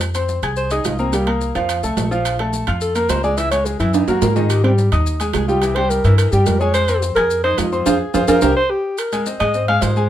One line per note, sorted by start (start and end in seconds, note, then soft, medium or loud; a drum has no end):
0.00 0.37 F2 medium
0.00 high timbale medium
0.00 maracas medium
0.15 0.38 C4 medium
0.15 0.38 C5 medium
0.15 0.38 C6 medium
0.15 high timbale medium
0.15 maracas medium
0.29 low timbale medium
0.29 maracas medium
0.43 0.82 C2 medium
0.43 0.66 G#4 medium
0.43 0.66 G#5 medium
0.43 0.66 G#6 medium
0.43 high timbale medium
0.43 maracas soft
0.56 0.70 C5 medium
0.56 maracas medium
0.71 0.94 D#4 medium
0.71 0.87 G#4 medium
0.71 0.94 D#5 medium
0.71 0.94 D#6 medium
0.71 high timbale medium
0.71 maracas medium
0.85 1.50 C2 medium
0.85 0.99 F4 medium
0.85 high timbale medium
0.85 low timbale medium
0.85 maracas medium
0.98 1.10 A#3 medium
0.98 1.16 C4 medium
0.98 1.11 A#4 medium
0.98 1.11 A#5 medium
0.98 maracas soft
1.13 1.24 G3 medium
1.13 1.70 A#3 medium
1.13 1.24 G4 medium
1.13 1.25 G5 medium
1.13 high timbale medium
1.13 maracas medium
1.27 1.50 A#3 medium
1.27 1.50 A#4 medium
1.27 1.50 A#5 medium
1.27 high timbale medium
1.41 low timbale medium
1.41 maracas medium
1.55 1.81 F2 medium
1.55 1.78 F3 medium
1.55 1.78 F4 medium
1.55 1.78 F5 medium
1.55 high timbale medium
1.55 maracas soft
1.69 high timbale loud
1.69 maracas medium
1.83 1.96 C2 medium
1.83 2.06 A3 medium
1.83 2.06 A4 medium
1.83 2.07 A5 medium
1.83 maracas medium
1.97 2.62 A#1 medium
1.97 high timbale medium
1.97 low timbale medium
1.97 maracas medium
2.11 2.34 F3 medium
2.11 2.34 F4 medium
2.11 2.34 F5 medium
2.11 maracas soft
2.25 high timbale loud
2.25 maracas medium
2.39 2.63 A3 medium
2.39 2.63 A4 medium
2.39 2.63 A5 medium
2.39 high timbale medium
2.53 low timbale medium
2.53 maracas medium
2.67 3.07 F2 loud
2.67 2.91 F4 medium
2.67 2.91 F5 medium
2.67 2.91 F6 medium
2.67 high timbale loud
2.67 maracas soft
2.81 2.97 A4 medium
2.81 maracas medium
2.95 3.18 A#3 medium
2.95 3.11 A#4 loud
2.95 3.19 A#4 medium
2.95 3.19 A#5 medium
2.95 high timbale medium
2.95 maracas medium
3.09 3.74 C#2 medium
3.09 3.23 C5 medium
3.09 high timbale medium
3.09 low timbale medium
3.09 maracas medium
3.23 3.35 G#3 medium
3.23 3.35 G#4 medium
3.23 3.40 D5 loud
3.23 3.35 G#5 medium
3.23 maracas soft
3.37 3.49 E3 medium
3.37 3.49 E4 medium
3.37 3.51 E5 loud
3.37 3.49 E5 medium
3.37 high timbale medium
3.37 maracas medium
3.51 3.75 G#3 medium
3.51 3.75 G#4 medium
3.51 3.67 C#5 medium
3.51 3.75 G#5 medium
3.51 high timbale medium
3.51 maracas medium
3.66 3.79 G#4 medium
3.66 low timbale medium
3.66 maracas medium
3.80 4.06 F#2 medium
3.80 4.03 E3 medium
3.80 3.96 E4 medium
3.80 4.03 E4 medium
3.80 4.03 E5 medium
3.80 high timbale medium
3.80 maracas soft
3.94 4.08 D#4 medium
3.94 high timbale loud
3.94 maracas medium
4.08 4.21 F#2 medium
4.08 4.31 A#3 medium
4.08 4.24 F#4 medium
4.08 4.31 A#4 medium
4.08 4.31 A#5 medium
4.08 low timbale medium
4.08 maracas medium
4.22 4.86 G#2 medium
4.22 4.37 A#4 medium
4.22 low timbale loud
4.22 maracas medium
4.36 4.59 D#3 medium
4.36 4.59 D#4 medium
4.36 4.51 G#4 medium
4.36 4.59 D#5 medium
4.36 low timbale medium
4.36 maracas soft
4.50 4.63 G4 medium
4.50 high timbale medium
4.50 maracas medium
4.64 4.87 G3 medium
4.64 4.72 C4 medium
4.64 4.87 G4 medium
4.64 4.87 G5 medium
4.64 high timbale medium
4.78 low timbale medium
4.78 maracas medium
4.92 5.31 D#2 medium
4.92 5.15 D#4 medium
4.92 5.15 D#5 medium
4.92 5.15 D#6 medium
4.92 high timbale medium
4.92 maracas soft
5.06 maracas medium
5.20 5.43 G#3 medium
5.20 5.43 G#4 medium
5.20 5.44 G#5 medium
5.20 high timbale medium
5.20 maracas medium
5.33 5.99 C2 medium
5.33 5.47 G#4 medium
5.33 high timbale medium
5.33 low timbale medium
5.33 maracas medium
5.48 5.60 G3 medium
5.48 5.63 F4 medium
5.48 5.60 G4 medium
5.48 5.60 G5 medium
5.48 maracas soft
5.62 5.74 E3 medium
5.62 5.74 E4 medium
5.62 5.77 G4 medium
5.62 5.74 E5 medium
5.62 high timbale medium
5.62 maracas medium
5.76 6.00 G3 medium
5.76 6.00 G4 medium
5.76 5.91 C5 loud
5.76 6.00 G5 medium
5.76 high timbale medium
5.90 6.17 A#4 medium
5.90 low timbale medium
5.90 maracas medium
6.04 6.30 G2 medium
6.04 6.27 E3 medium
6.04 6.28 E4 medium
6.04 6.28 E5 medium
6.04 high timbale medium
6.04 maracas soft
6.18 6.33 A#4 medium
6.18 high timbale loud
6.18 maracas medium
6.32 6.45 G2 medium
6.32 6.55 G3 medium
6.32 6.48 G4 medium
6.32 6.56 G4 medium
6.32 6.56 G5 medium
6.32 maracas medium
6.46 7.11 F2 loud
6.46 6.61 A#4 medium
6.46 high timbale medium
6.46 low timbale medium
6.46 maracas medium
6.60 6.83 G#3 medium
6.60 6.84 G#4 medium
6.60 6.74 C#5 loud
6.60 6.84 G#5 medium
6.60 maracas soft
6.74 7.00 C5 medium
6.74 high timbale medium
6.74 maracas medium
6.88 7.11 C4 medium
6.88 7.11 C5 medium
6.88 7.12 C6 medium
6.88 high timbale medium
6.88 maracas medium
7.02 low timbale medium
7.02 maracas medium
7.15 7.55 F2 medium
7.15 7.39 G#4 medium
7.15 7.42 A#4 loud
7.15 7.40 G#5 medium
7.15 7.40 G#6 medium
7.15 high timbale medium
7.15 maracas soft
7.30 maracas medium
7.44 7.67 D#4 medium
7.44 7.60 C5 loud
7.44 7.67 D#5 medium
7.44 7.68 D#6 medium
7.44 high timbale medium
7.58 7.84 F2 medium
7.58 7.88 F4 medium
7.58 high timbale loud
7.58 low timbale medium
7.58 maracas medium
7.72 7.84 C4 medium
7.72 7.84 C5 medium
7.72 7.84 C6 medium
7.72 maracas soft
7.86 7.97 F2 loud
7.86 7.95 F4 loud
7.86 7.95 G#4 loud
7.86 8.14 G#4 medium
7.86 7.95 C5 loud
7.86 high timbale loud
7.86 maracas loud
8.14 8.25 F2 loud
8.14 8.23 F4 loud
8.14 8.23 G#4 loud
8.14 8.23 C5 loud
8.14 high timbale medium
8.14 maracas loud
8.28 8.39 F2 medium
8.28 8.37 F4 loud
8.28 8.37 G#4 loud
8.28 8.54 A#4 loud
8.28 8.37 C5 loud
8.28 high timbale loud
8.28 maracas loud
8.42 8.53 C2 loud
8.42 8.51 G4 loud
8.42 8.51 A#4 loud
8.42 8.51 C5 medium
8.42 high timbale loud
8.42 maracas medium
8.57 8.72 C5 loud
8.70 9.01 G4 medium
8.98 9.27 A#4 medium
8.98 high timbale loud
8.98 maracas medium
9.12 9.24 G#3 medium
9.12 9.24 G#4 medium
9.12 9.24 G#5 medium
9.12 high timbale medium
9.12 maracas medium
9.26 9.38 C4 medium
9.26 9.38 C5 medium
9.26 9.38 D#5 medium
9.26 low timbale medium
9.26 maracas medium
9.40 9.80 G#2 medium
9.40 9.52 G#3 medium
9.40 9.52 G#4 medium
9.40 9.66 D#5 loud
9.40 9.52 G#5 medium
9.40 high timbale loud
9.40 maracas soft
9.54 9.66 C4 medium
9.54 9.66 C5 medium
9.54 9.66 D#5 medium
9.54 maracas medium
9.68 9.91 G#3 medium
9.68 9.92 G#4 medium
9.68 9.84 F5 loud
9.68 9.92 G#5 medium
9.68 high timbale medium
9.82 10.09 G#2 medium
9.82 10.09 C5 medium
9.82 high timbale medium
9.82 low timbale medium
9.82 maracas medium
9.96 10.08 G#3 medium
9.96 10.08 G#4 medium
9.96 10.08 G#5 medium
9.96 maracas soft